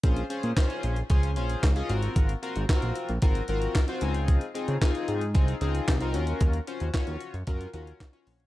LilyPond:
<<
  \new Staff \with { instrumentName = "Analog polysynth" } { \time 4/4 \key ees \dorian \tempo 4 = 113 <des' f' aes' c''>8 <des' f' aes' c''>8 <des' f' aes' c''>8. r16 <des' f' aes' c''>8 <des' f' aes' c''>8 r16 <des' f' aes' ees''>16 <c' f' ges' bes'>8~ | <c' f' ges' bes'>16 r16 <c' f' ges' bes'>8 <c' f' ges' bes'>8. r16 <c' f' ges' bes'>8 <c' f' ges' bes'>8 r16 <c' f' ges' c''>16 <c' ees' fes' f' aes'>8~ | <c' ees' fes' f' aes'>16 r16 <c' ees' f' aes'>8 <c' ees' f' aes'>8. r16 <c' ees' f' aes'>8 <c' ees' f' aes'>8 r16 <c' ees' f' bes'>16 <des' f' ges' bes'>8~ | <des' f' ges' bes'>16 r16 <des' f' ges' c''>8 <des' f' ges' des''>8. r16 <des' f' ges' bes'>8 <des' f' ges' bes'>8 r16 <des' f' ges' des''>8 r16 | }
  \new Staff \with { instrumentName = "Analog synth bass" } { \clef bass \time 4/4 \key ees \dorian bes,,8 r16 bes,16 r8 bes,,8 des,8 bes,,8 des,8 aes,,8 | aes,,8 r16 aes,,16 r16 bes,,16 r16 bes,,16 aes,,8 aes,,8 r8 des,8~ | des,8 r16 des16 r8 aes,8 c,8 des,8 c,8 ees,8 | ees,8 r16 ees,16 r16 ees,16 r16 ges,16 ges,8 ees,8 r8 bes,,8 | }
  \new DrumStaff \with { instrumentName = "Drums" } \drummode { \time 4/4 <hh bd>16 hh16 hh16 hh16 <hc hh bd sn>16 hh16 hh16 hh16 <hh bd>16 hh16 hh16 hh16 <hc hh bd sn>16 hh16 hh16 hh16 | <hh bd>16 hh16 hh16 hh16 <hc hh bd sn>16 hh16 hh16 hh16 <hh bd>16 hh16 hh16 hh16 <hc hh bd sn>16 hh16 hh16 hh16 | <hh bd>16 hh16 hh16 hh16 <hc hh bd sn>16 hh16 hh16 hh16 <hh bd>16 hh16 hh16 hh16 <hc hh bd sn>16 hh16 hh16 hh16 | <hh bd>16 hh16 hh16 hh16 <hc hh bd sn>16 hh16 hh16 hh16 <hh bd>16 hh16 hh16 hh16 <hc hh bd sn>16 hh16 hho16 hh16 | }
>>